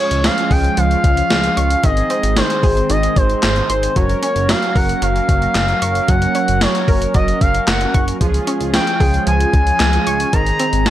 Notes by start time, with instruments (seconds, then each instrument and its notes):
Already playing: analog synth pad F3 G#3 C#4, analog polysynth G#3 C#4 F4, synth arpeggio sound C#4
0.00 analog synth lead C#5
0.11 analog synth bass C#2, closed hi-hat
0.24 synth arpeggio sound F3, analog synth lead F5, snare, closed hi-hat
0.38 closed hi-hat
0.51 analog synth bass C#2, synth arpeggio sound G#4, analog synth lead G5, kick, open hi-hat
0.64 closed hi-hat
0.77 analog synth bass C#2, synth arpeggio sound F3, analog synth lead F5, closed hi-hat
0.91 closed hi-hat
1.04 analog synth bass C#2, kick, closed hi-hat
1.17 closed hi-hat
1.30 analog synth bass C#2, snare, closed hi-hat
1.44 closed hi-hat
1.57 analog synth bass C#2, synth arpeggio sound C#6, closed hi-hat
1.70 closed hi-hat
1.84 analog synth bass G#1, synth arpeggio sound D#3, analog synth pad D#3 G#3 C4, analog polysynth C4 D#4 G#4, analog synth lead D#5, kick, closed hi-hat
1.97 closed hi-hat
2.10 synth arpeggio sound C4, closed hi-hat
2.23 analog synth bass G#1, closed hi-hat
2.37 synth arpeggio sound D#3, analog synth lead C5, snare, closed hi-hat
2.50 closed hi-hat
2.63 analog synth bass G#1, synth arpeggio sound G#4, kick, open hi-hat
2.77 closed hi-hat
2.90 analog synth bass G#1, synth arpeggio sound D#3, analog synth lead D#5, closed hi-hat
3.03 closed hi-hat
3.16 analog synth bass G#1, analog synth lead C5, kick, closed hi-hat
3.30 closed hi-hat
3.43 analog synth bass G#1, analog synth lead C5, snare, clap, closed hi-hat
3.56 closed hi-hat
3.69 analog synth bass G#1, analog synth lead C5, synth arpeggio sound C6, closed hi-hat
3.83 closed hi-hat
3.96 analog synth bass F#1, synth arpeggio sound F#3, analog synth pad F#3 A#3 C#4, analog polysynth C#4 F#4 A#4, analog synth lead C#5, kick, closed hi-hat
4.09 closed hi-hat
4.23 synth arpeggio sound C#4, analog synth lead C#5, closed hi-hat
4.36 analog synth bass F#1, closed hi-hat
4.49 synth arpeggio sound F#3, analog synth lead F5, snare, closed hi-hat
4.63 closed hi-hat
4.76 analog synth bass F#1, synth arpeggio sound A#4, analog synth lead F#5, kick, open hi-hat
4.89 closed hi-hat
5.02 analog synth bass F#1, synth arpeggio sound F#3, analog synth lead F5, closed hi-hat
5.16 closed hi-hat
5.29 analog synth bass F#1, kick, closed hi-hat
5.42 closed hi-hat
5.55 analog synth bass F#1, snare, clap, closed hi-hat
5.68 closed hi-hat
5.82 analog synth bass F#1, synth arpeggio sound C#6, closed hi-hat
5.95 closed hi-hat
6.08 analog synth bass F#1, synth arpeggio sound F#3, analog synth lead F#5, kick, closed hi-hat
6.22 closed hi-hat
6.35 synth arpeggio sound C#4, closed hi-hat
6.48 analog synth bass F#1, closed hi-hat
6.61 synth arpeggio sound F#3, analog synth lead C#5, snare, closed hi-hat
6.75 closed hi-hat
6.88 analog synth bass F#1, synth arpeggio sound A#4, kick, open hi-hat
7.02 closed hi-hat
7.14 analog synth bass F#1, synth arpeggio sound F#3, analog synth lead D#5, kick, closed hi-hat
7.28 closed hi-hat
7.41 analog synth bass F#1, analog synth lead F5, kick, closed hi-hat
7.54 closed hi-hat
7.68 analog synth bass F#1, analog synth lead F#5, snare, clap, closed hi-hat
7.81 closed hi-hat
7.94 analog synth bass F#1, synth arpeggio sound C#6, kick, closed hi-hat
8.08 closed hi-hat
8.21 analog synth bass C#2, analog synth pad F3 G#3, synth arpeggio sound F3, analog polysynth C#4 F4 G#4, kick, closed hi-hat
8.34 closed hi-hat
8.47 synth arpeggio sound C#4, closed hi-hat
8.61 analog synth bass C#2, closed hi-hat
8.74 synth arpeggio sound F3, analog synth lead G5, snare, closed hi-hat
8.87 closed hi-hat
9.00 analog synth bass C#2, synth arpeggio sound G#4, kick, open hi-hat
9.14 closed hi-hat
9.27 analog synth bass C#2, synth arpeggio sound F3, analog synth lead G#5, closed hi-hat
9.40 closed hi-hat
9.54 analog synth bass C#2, kick, closed hi-hat
9.67 closed hi-hat
9.80 analog synth bass C#2, snare, clap, closed hi-hat
9.93 closed hi-hat
10.07 analog synth bass C#2, synth arpeggio sound C#6, closed hi-hat
10.20 closed hi-hat
10.33 analog synth bass G#1, synth arpeggio sound D#3, analog synth pad D#3 C4, analog polysynth C4 D#4 G#4, analog synth lead A#5, kick, closed hi-hat
10.46 closed hi-hat
10.59 synth arpeggio sound C4, closed hi-hat
10.73 analog synth bass G#1, closed hi-hat
10.86 synth arpeggio sound D#3, analog synth lead G#5, snare, closed hi-hat